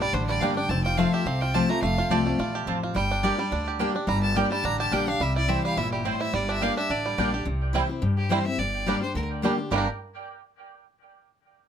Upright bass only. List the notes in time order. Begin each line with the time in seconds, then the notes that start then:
0.13 A1
0.41 G1
0.69 F1
1.25 C2
1.82 F1
2.10 C2
2.38 A#1
2.67 A1
2.95 G1
3.52 D2
4.07 G1
4.64 A1
4.92 A#1
5.20 C2
5.77 G1
6.33 G1
6.90 A1
7.18 A#1
7.46 C2
8.02 G2
8.58 G1
9.15 D2
9.71 G1